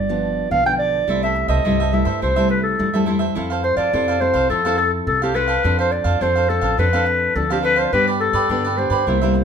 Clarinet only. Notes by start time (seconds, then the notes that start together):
Already playing: D5
0.52 F5
0.66 G5
0.78 D5
1.23 E5
1.49 D#5
1.93 E5
2.23 C5
2.50 B4
2.63 A4
3.64 C5
3.77 D5
4.21 C5
4.50 A4
4.78 A4
5.08 A4
5.23 G4
5.35 B4
5.80 C5
5.92 D5
6.22 C5
6.49 A4
6.79 B4
7.36 A4
7.52 G4
7.65 B4
7.79 C5
7.84 C5 D5
7.93 B4
8.21 A4
8.78 C5